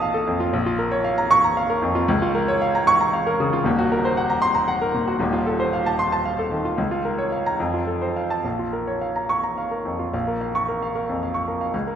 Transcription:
grand piano
Already playing: A#1 F4 A4 D#5 F5 A5 D#6
0.02 F5
0.14 A4
0.27 F2
0.40 F4
0.53 A#1
0.66 F4
0.79 A#4
0.91 C#5
1.04 F5
1.18 A#5
1.31 C#6
1.44 A#5
1.57 F5
1.70 A#4
1.82 F2
1.95 F4
2.08 C#2
2.22 F4
2.35 A#4
2.48 C#5
2.62 F5
2.75 A#5
2.87 C#6
3.01 A#5
3.13 F5
3.27 A#4
3.40 C#3
3.53 F4
3.64 D#1 D#2
3.78 F#4
3.92 A#4
4.05 C5
4.17 F#5
4.30 A#5
4.42 C6
4.55 A#5
4.68 F#5
4.82 A#4
4.94 A#2
5.07 F#4
5.19 D#1 D#2
5.33 F4
5.46 A4
5.60 C5
5.73 F5
5.86 A5
5.99 C6
6.12 A5
6.25 F5
6.39 A4
6.52 D#3
6.65 F4
6.78 C#2
6.91 F4
7.05 A#4
7.18 C#5
7.32 F5
7.46 A#5
7.60 F2
7.74 F4
7.87 A4
8.02 C5
8.16 F5
8.30 A5
8.45 A#1
8.59 F4
8.73 A#4
8.87 C#5
9.01 F5
9.16 A#5
9.29 C#6
9.43 A#5
9.58 F5
9.71 A#4
9.85 F2
9.99 F4
10.13 A#1 F5
10.28 A#4
10.41 F5
10.55 C#6
10.68 A#4
10.82 F5
10.95 A#4
11.09 F2
11.23 F5
11.34 C#6
11.48 A#4
11.61 F5
11.74 C#2 F5
11.87 A#4

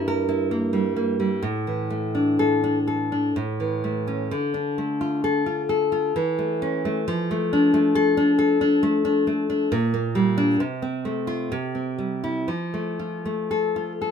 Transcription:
nylon-string guitar
Already playing: G2 G3 A#3 E4
0.08 A#4
0.29 E4
0.51 A#3
0.73 G3
0.96 A#3
1.20 G3
1.42 A2
1.67 E3
1.90 A3
2.15 D4
2.39 A4
2.64 D4
2.87 A4
3.12 D4
3.36 A2
3.60 E3
3.84 A3
4.07 C#4
4.31 D3
4.54 D4
4.78 A3
5.01 F4
5.24 A4
5.46 F4
5.69 A4
5.92 F4
6.16 E3
6.39 A3
6.62 C#4
6.85 A3
7.08 F3
7.31 A3
7.53 D4
7.74 A3
7.95 A4
8.17 D4
8.39 A4
8.61 D4
8.83 A3
9.05 D4
9.27 A3
9.50 D4
9.72 A#2
9.94 A#3
10.15 G3
10.38 D4
10.60 C3
10.82 C4
11.05 A3
11.27 F4
11.52 C3
11.75 C4
11.98 G3
12.24 E4
12.48 F3
12.74 A3
12.99 F4
13.26 A3
13.51 A4
13.76 F4
14.02 A4

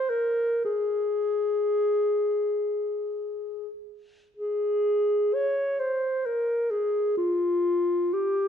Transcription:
clarinet
Already playing: C5
0.09 A#4
0.65 G#4
4.37 G#4
5.34 C#5
5.79 C5
6.26 A#4
6.71 G#4
7.17 F4
8.13 G4

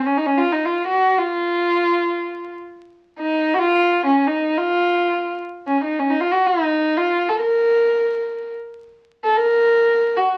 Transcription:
violin
0.06 C#4
0.18 D#4
0.26 C#4
0.37 F4
0.52 D#4
0.65 F4
0.88 F#4
1.18 F4
3.19 D#4
3.54 F#4
3.59 F4
4.06 C#4
4.27 D#4
4.57 F4
5.67 C#4
5.84 D#4
5.99 C#4
6.10 D#4
6.20 F4
6.32 F#4
6.46 D#4
6.97 F4
7.29 A4
7.41 A#4
9.24 A4
9.37 A#4
10.17 F#4

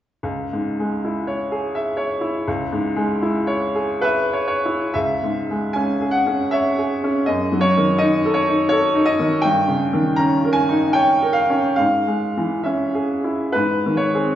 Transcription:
upright piano
0.23 C#2
0.53 G#2
0.79 G#3
1.04 E4
1.27 C#5
1.52 G#4
1.75 E5
1.97 C#5
2.21 E4
2.48 C#2
2.72 G#2
2.96 G#3
3.22 E4
3.47 C#5
3.75 G#4
4.01 B4 E5
4.33 C#5
4.47 C#5
4.65 E4
4.94 C#2 E5
5.23 G#2
5.50 G#3
5.73 C#4 G#5
6.01 G#4
6.11 F#5
6.26 C#4
6.51 C#5 E5
6.78 G#4
7.04 C#4
7.26 F#2 D#5
7.52 F#3
7.61 C#5
7.77 D#3
7.98 D#4 D#5
8.25 A4
8.34 C#5
8.48 D#4
8.69 A4 C#5
8.95 D#4
9.05 D#5
9.19 D#3
9.42 G2 G5
9.68 C#3
9.93 D#3
10.16 C#4 A#5
10.44 A#4
10.53 G#5
10.69 D#4
10.93 C#5 G5
11.22 A#4
11.33 F5
11.50 C#4
11.76 G#2 F5
12.07 G#3
12.37 E3
12.63 C#4 E5
12.95 G#4
13.24 E4
13.52 G#2 B4
13.86 D#3
13.97 C#5
14.15 C4 G#4

